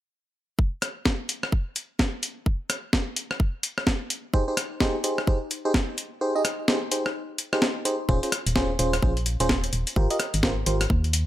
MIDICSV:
0, 0, Header, 1, 4, 480
1, 0, Start_track
1, 0, Tempo, 468750
1, 601, Time_signature, 4, 2, 24, 8
1, 11538, End_track
2, 0, Start_track
2, 0, Title_t, "FM electric piano"
2, 0, Program_c, 0, 5
2, 4440, Note_on_c, 0, 63, 82
2, 4440, Note_on_c, 0, 67, 77
2, 4440, Note_on_c, 0, 68, 78
2, 4440, Note_on_c, 0, 72, 94
2, 4549, Note_off_c, 0, 63, 0
2, 4549, Note_off_c, 0, 67, 0
2, 4549, Note_off_c, 0, 68, 0
2, 4549, Note_off_c, 0, 72, 0
2, 4586, Note_on_c, 0, 63, 77
2, 4586, Note_on_c, 0, 67, 71
2, 4586, Note_on_c, 0, 68, 66
2, 4586, Note_on_c, 0, 72, 87
2, 4656, Note_off_c, 0, 63, 0
2, 4656, Note_off_c, 0, 67, 0
2, 4656, Note_off_c, 0, 68, 0
2, 4656, Note_off_c, 0, 72, 0
2, 4920, Note_on_c, 0, 63, 93
2, 4920, Note_on_c, 0, 67, 85
2, 4920, Note_on_c, 0, 68, 85
2, 4920, Note_on_c, 0, 72, 102
2, 5084, Note_off_c, 0, 63, 0
2, 5084, Note_off_c, 0, 67, 0
2, 5084, Note_off_c, 0, 68, 0
2, 5084, Note_off_c, 0, 72, 0
2, 5160, Note_on_c, 0, 63, 77
2, 5160, Note_on_c, 0, 67, 72
2, 5160, Note_on_c, 0, 68, 68
2, 5160, Note_on_c, 0, 72, 84
2, 5324, Note_off_c, 0, 63, 0
2, 5324, Note_off_c, 0, 67, 0
2, 5324, Note_off_c, 0, 68, 0
2, 5324, Note_off_c, 0, 72, 0
2, 5401, Note_on_c, 0, 63, 75
2, 5401, Note_on_c, 0, 67, 68
2, 5401, Note_on_c, 0, 68, 66
2, 5401, Note_on_c, 0, 72, 80
2, 5509, Note_off_c, 0, 63, 0
2, 5509, Note_off_c, 0, 67, 0
2, 5509, Note_off_c, 0, 68, 0
2, 5509, Note_off_c, 0, 72, 0
2, 5788, Note_on_c, 0, 63, 87
2, 5788, Note_on_c, 0, 67, 78
2, 5788, Note_on_c, 0, 68, 79
2, 5788, Note_on_c, 0, 72, 97
2, 5857, Note_off_c, 0, 63, 0
2, 5857, Note_off_c, 0, 67, 0
2, 5857, Note_off_c, 0, 68, 0
2, 5857, Note_off_c, 0, 72, 0
2, 6361, Note_on_c, 0, 63, 77
2, 6361, Note_on_c, 0, 67, 74
2, 6361, Note_on_c, 0, 68, 75
2, 6361, Note_on_c, 0, 72, 91
2, 6486, Note_off_c, 0, 63, 0
2, 6486, Note_off_c, 0, 67, 0
2, 6486, Note_off_c, 0, 68, 0
2, 6486, Note_off_c, 0, 72, 0
2, 6507, Note_on_c, 0, 63, 84
2, 6507, Note_on_c, 0, 67, 77
2, 6507, Note_on_c, 0, 75, 90
2, 6508, Note_on_c, 0, 68, 75
2, 6576, Note_off_c, 0, 63, 0
2, 6576, Note_off_c, 0, 67, 0
2, 6576, Note_off_c, 0, 75, 0
2, 6577, Note_off_c, 0, 68, 0
2, 6841, Note_on_c, 0, 63, 73
2, 6841, Note_on_c, 0, 67, 67
2, 6841, Note_on_c, 0, 68, 67
2, 6841, Note_on_c, 0, 72, 79
2, 6949, Note_off_c, 0, 63, 0
2, 6949, Note_off_c, 0, 67, 0
2, 6949, Note_off_c, 0, 68, 0
2, 6949, Note_off_c, 0, 72, 0
2, 7081, Note_on_c, 0, 63, 70
2, 7081, Note_on_c, 0, 67, 66
2, 7081, Note_on_c, 0, 68, 66
2, 7081, Note_on_c, 0, 72, 76
2, 7244, Note_off_c, 0, 63, 0
2, 7244, Note_off_c, 0, 67, 0
2, 7244, Note_off_c, 0, 68, 0
2, 7245, Note_off_c, 0, 72, 0
2, 7707, Note_on_c, 0, 72, 89
2, 7708, Note_on_c, 0, 63, 77
2, 7708, Note_on_c, 0, 67, 78
2, 7708, Note_on_c, 0, 68, 73
2, 7827, Note_off_c, 0, 68, 0
2, 7827, Note_off_c, 0, 72, 0
2, 7828, Note_off_c, 0, 63, 0
2, 7828, Note_off_c, 0, 67, 0
2, 8041, Note_on_c, 0, 63, 78
2, 8041, Note_on_c, 0, 67, 73
2, 8041, Note_on_c, 0, 68, 72
2, 8041, Note_on_c, 0, 72, 87
2, 8149, Note_off_c, 0, 63, 0
2, 8149, Note_off_c, 0, 67, 0
2, 8149, Note_off_c, 0, 68, 0
2, 8149, Note_off_c, 0, 72, 0
2, 8281, Note_on_c, 0, 68, 83
2, 8281, Note_on_c, 0, 72, 102
2, 8282, Note_on_c, 0, 61, 86
2, 8282, Note_on_c, 0, 65, 81
2, 8389, Note_off_c, 0, 68, 0
2, 8389, Note_off_c, 0, 72, 0
2, 8390, Note_off_c, 0, 61, 0
2, 8390, Note_off_c, 0, 65, 0
2, 8429, Note_on_c, 0, 61, 75
2, 8429, Note_on_c, 0, 65, 72
2, 8429, Note_on_c, 0, 68, 70
2, 8429, Note_on_c, 0, 72, 83
2, 8497, Note_off_c, 0, 61, 0
2, 8497, Note_off_c, 0, 65, 0
2, 8497, Note_off_c, 0, 68, 0
2, 8497, Note_off_c, 0, 72, 0
2, 8761, Note_on_c, 0, 61, 94
2, 8761, Note_on_c, 0, 65, 84
2, 8762, Note_on_c, 0, 68, 88
2, 8762, Note_on_c, 0, 72, 102
2, 8925, Note_off_c, 0, 61, 0
2, 8925, Note_off_c, 0, 65, 0
2, 8925, Note_off_c, 0, 68, 0
2, 8925, Note_off_c, 0, 72, 0
2, 9002, Note_on_c, 0, 68, 73
2, 9002, Note_on_c, 0, 72, 91
2, 9003, Note_on_c, 0, 61, 77
2, 9003, Note_on_c, 0, 65, 74
2, 9165, Note_off_c, 0, 61, 0
2, 9165, Note_off_c, 0, 65, 0
2, 9165, Note_off_c, 0, 68, 0
2, 9165, Note_off_c, 0, 72, 0
2, 9241, Note_on_c, 0, 61, 71
2, 9241, Note_on_c, 0, 65, 68
2, 9241, Note_on_c, 0, 68, 66
2, 9241, Note_on_c, 0, 72, 82
2, 9349, Note_off_c, 0, 61, 0
2, 9349, Note_off_c, 0, 65, 0
2, 9349, Note_off_c, 0, 68, 0
2, 9349, Note_off_c, 0, 72, 0
2, 9629, Note_on_c, 0, 61, 94
2, 9629, Note_on_c, 0, 65, 81
2, 9629, Note_on_c, 0, 68, 85
2, 9629, Note_on_c, 0, 72, 104
2, 9697, Note_off_c, 0, 61, 0
2, 9697, Note_off_c, 0, 65, 0
2, 9697, Note_off_c, 0, 68, 0
2, 9697, Note_off_c, 0, 72, 0
2, 10202, Note_on_c, 0, 65, 83
2, 10202, Note_on_c, 0, 67, 76
2, 10202, Note_on_c, 0, 70, 77
2, 10202, Note_on_c, 0, 72, 86
2, 10326, Note_off_c, 0, 65, 0
2, 10326, Note_off_c, 0, 67, 0
2, 10326, Note_off_c, 0, 70, 0
2, 10326, Note_off_c, 0, 72, 0
2, 10349, Note_on_c, 0, 65, 84
2, 10349, Note_on_c, 0, 67, 75
2, 10349, Note_on_c, 0, 70, 76
2, 10349, Note_on_c, 0, 75, 93
2, 10417, Note_off_c, 0, 65, 0
2, 10417, Note_off_c, 0, 67, 0
2, 10417, Note_off_c, 0, 70, 0
2, 10417, Note_off_c, 0, 75, 0
2, 10682, Note_on_c, 0, 65, 76
2, 10682, Note_on_c, 0, 67, 66
2, 10682, Note_on_c, 0, 70, 69
2, 10682, Note_on_c, 0, 72, 84
2, 10790, Note_off_c, 0, 65, 0
2, 10790, Note_off_c, 0, 67, 0
2, 10790, Note_off_c, 0, 70, 0
2, 10790, Note_off_c, 0, 72, 0
2, 10922, Note_on_c, 0, 65, 72
2, 10922, Note_on_c, 0, 67, 65
2, 10922, Note_on_c, 0, 70, 64
2, 10922, Note_on_c, 0, 72, 80
2, 11085, Note_off_c, 0, 65, 0
2, 11085, Note_off_c, 0, 67, 0
2, 11085, Note_off_c, 0, 70, 0
2, 11085, Note_off_c, 0, 72, 0
2, 11538, End_track
3, 0, Start_track
3, 0, Title_t, "FM bass"
3, 0, Program_c, 1, 39
3, 8282, Note_on_c, 1, 27, 96
3, 8404, Note_off_c, 1, 27, 0
3, 8669, Note_on_c, 1, 27, 83
3, 8978, Note_off_c, 1, 27, 0
3, 9003, Note_on_c, 1, 27, 96
3, 9212, Note_off_c, 1, 27, 0
3, 9242, Note_on_c, 1, 34, 90
3, 9591, Note_off_c, 1, 34, 0
3, 9630, Note_on_c, 1, 27, 92
3, 9938, Note_off_c, 1, 27, 0
3, 9964, Note_on_c, 1, 27, 80
3, 10085, Note_off_c, 1, 27, 0
3, 10202, Note_on_c, 1, 32, 100
3, 10325, Note_off_c, 1, 32, 0
3, 10590, Note_on_c, 1, 32, 82
3, 10898, Note_off_c, 1, 32, 0
3, 10924, Note_on_c, 1, 32, 95
3, 11132, Note_off_c, 1, 32, 0
3, 11162, Note_on_c, 1, 39, 89
3, 11510, Note_off_c, 1, 39, 0
3, 11538, End_track
4, 0, Start_track
4, 0, Title_t, "Drums"
4, 601, Note_on_c, 9, 36, 110
4, 703, Note_off_c, 9, 36, 0
4, 840, Note_on_c, 9, 37, 53
4, 840, Note_on_c, 9, 42, 101
4, 943, Note_off_c, 9, 37, 0
4, 943, Note_off_c, 9, 42, 0
4, 1080, Note_on_c, 9, 38, 103
4, 1081, Note_on_c, 9, 36, 109
4, 1183, Note_off_c, 9, 36, 0
4, 1183, Note_off_c, 9, 38, 0
4, 1321, Note_on_c, 9, 42, 90
4, 1423, Note_off_c, 9, 42, 0
4, 1467, Note_on_c, 9, 37, 53
4, 1561, Note_on_c, 9, 36, 107
4, 1570, Note_off_c, 9, 37, 0
4, 1663, Note_off_c, 9, 36, 0
4, 1801, Note_on_c, 9, 42, 98
4, 1904, Note_off_c, 9, 42, 0
4, 2041, Note_on_c, 9, 36, 111
4, 2041, Note_on_c, 9, 38, 107
4, 2143, Note_off_c, 9, 36, 0
4, 2143, Note_off_c, 9, 38, 0
4, 2281, Note_on_c, 9, 42, 86
4, 2384, Note_off_c, 9, 42, 0
4, 2521, Note_on_c, 9, 36, 110
4, 2623, Note_off_c, 9, 36, 0
4, 2761, Note_on_c, 9, 37, 54
4, 2761, Note_on_c, 9, 42, 100
4, 2864, Note_off_c, 9, 37, 0
4, 2864, Note_off_c, 9, 42, 0
4, 3000, Note_on_c, 9, 36, 108
4, 3001, Note_on_c, 9, 38, 109
4, 3103, Note_off_c, 9, 36, 0
4, 3103, Note_off_c, 9, 38, 0
4, 3240, Note_on_c, 9, 42, 86
4, 3343, Note_off_c, 9, 42, 0
4, 3387, Note_on_c, 9, 37, 50
4, 3480, Note_on_c, 9, 36, 114
4, 3489, Note_off_c, 9, 37, 0
4, 3582, Note_off_c, 9, 36, 0
4, 3720, Note_on_c, 9, 42, 99
4, 3822, Note_off_c, 9, 42, 0
4, 3867, Note_on_c, 9, 37, 54
4, 3960, Note_on_c, 9, 36, 114
4, 3960, Note_on_c, 9, 38, 115
4, 3970, Note_off_c, 9, 37, 0
4, 4062, Note_off_c, 9, 36, 0
4, 4063, Note_off_c, 9, 38, 0
4, 4201, Note_on_c, 9, 42, 85
4, 4303, Note_off_c, 9, 42, 0
4, 4440, Note_on_c, 9, 36, 111
4, 4542, Note_off_c, 9, 36, 0
4, 4681, Note_on_c, 9, 37, 54
4, 4681, Note_on_c, 9, 42, 97
4, 4783, Note_off_c, 9, 37, 0
4, 4783, Note_off_c, 9, 42, 0
4, 4920, Note_on_c, 9, 36, 117
4, 4920, Note_on_c, 9, 38, 112
4, 5022, Note_off_c, 9, 36, 0
4, 5022, Note_off_c, 9, 38, 0
4, 5160, Note_on_c, 9, 42, 83
4, 5262, Note_off_c, 9, 42, 0
4, 5307, Note_on_c, 9, 37, 52
4, 5400, Note_on_c, 9, 36, 123
4, 5409, Note_off_c, 9, 37, 0
4, 5503, Note_off_c, 9, 36, 0
4, 5641, Note_on_c, 9, 42, 93
4, 5743, Note_off_c, 9, 42, 0
4, 5881, Note_on_c, 9, 36, 119
4, 5881, Note_on_c, 9, 38, 115
4, 5983, Note_off_c, 9, 36, 0
4, 5983, Note_off_c, 9, 38, 0
4, 6121, Note_on_c, 9, 42, 80
4, 6224, Note_off_c, 9, 42, 0
4, 6602, Note_on_c, 9, 37, 52
4, 6602, Note_on_c, 9, 42, 94
4, 6704, Note_off_c, 9, 37, 0
4, 6704, Note_off_c, 9, 42, 0
4, 6841, Note_on_c, 9, 38, 115
4, 6944, Note_off_c, 9, 38, 0
4, 7081, Note_on_c, 9, 42, 88
4, 7183, Note_off_c, 9, 42, 0
4, 7228, Note_on_c, 9, 37, 50
4, 7330, Note_off_c, 9, 37, 0
4, 7562, Note_on_c, 9, 42, 97
4, 7664, Note_off_c, 9, 42, 0
4, 7709, Note_on_c, 9, 37, 54
4, 7801, Note_on_c, 9, 38, 115
4, 7811, Note_off_c, 9, 37, 0
4, 7904, Note_off_c, 9, 38, 0
4, 8041, Note_on_c, 9, 42, 77
4, 8144, Note_off_c, 9, 42, 0
4, 8281, Note_on_c, 9, 36, 113
4, 8383, Note_off_c, 9, 36, 0
4, 8429, Note_on_c, 9, 42, 51
4, 8522, Note_off_c, 9, 42, 0
4, 8522, Note_on_c, 9, 37, 56
4, 8522, Note_on_c, 9, 42, 111
4, 8624, Note_off_c, 9, 37, 0
4, 8624, Note_off_c, 9, 42, 0
4, 8668, Note_on_c, 9, 42, 62
4, 8761, Note_on_c, 9, 36, 112
4, 8762, Note_on_c, 9, 38, 114
4, 8771, Note_off_c, 9, 42, 0
4, 8864, Note_off_c, 9, 36, 0
4, 8864, Note_off_c, 9, 38, 0
4, 9001, Note_on_c, 9, 42, 96
4, 9104, Note_off_c, 9, 42, 0
4, 9149, Note_on_c, 9, 37, 55
4, 9149, Note_on_c, 9, 42, 59
4, 9241, Note_on_c, 9, 36, 114
4, 9251, Note_off_c, 9, 37, 0
4, 9251, Note_off_c, 9, 42, 0
4, 9344, Note_off_c, 9, 36, 0
4, 9389, Note_on_c, 9, 42, 32
4, 9481, Note_off_c, 9, 42, 0
4, 9481, Note_on_c, 9, 42, 103
4, 9584, Note_off_c, 9, 42, 0
4, 9628, Note_on_c, 9, 42, 62
4, 9721, Note_on_c, 9, 38, 118
4, 9722, Note_on_c, 9, 36, 108
4, 9730, Note_off_c, 9, 42, 0
4, 9823, Note_off_c, 9, 38, 0
4, 9824, Note_off_c, 9, 36, 0
4, 9867, Note_on_c, 9, 42, 47
4, 9960, Note_off_c, 9, 42, 0
4, 9960, Note_on_c, 9, 42, 88
4, 10063, Note_off_c, 9, 42, 0
4, 10107, Note_on_c, 9, 42, 62
4, 10202, Note_on_c, 9, 36, 114
4, 10209, Note_off_c, 9, 42, 0
4, 10304, Note_off_c, 9, 36, 0
4, 10347, Note_on_c, 9, 42, 50
4, 10440, Note_off_c, 9, 42, 0
4, 10440, Note_on_c, 9, 37, 56
4, 10440, Note_on_c, 9, 42, 102
4, 10543, Note_off_c, 9, 37, 0
4, 10543, Note_off_c, 9, 42, 0
4, 10587, Note_on_c, 9, 42, 60
4, 10680, Note_on_c, 9, 38, 121
4, 10682, Note_on_c, 9, 36, 115
4, 10689, Note_off_c, 9, 42, 0
4, 10783, Note_off_c, 9, 38, 0
4, 10784, Note_off_c, 9, 36, 0
4, 10920, Note_on_c, 9, 42, 93
4, 11022, Note_off_c, 9, 42, 0
4, 11067, Note_on_c, 9, 37, 54
4, 11067, Note_on_c, 9, 42, 57
4, 11161, Note_on_c, 9, 36, 121
4, 11169, Note_off_c, 9, 37, 0
4, 11169, Note_off_c, 9, 42, 0
4, 11264, Note_off_c, 9, 36, 0
4, 11308, Note_on_c, 9, 42, 34
4, 11401, Note_off_c, 9, 42, 0
4, 11401, Note_on_c, 9, 42, 105
4, 11503, Note_off_c, 9, 42, 0
4, 11538, End_track
0, 0, End_of_file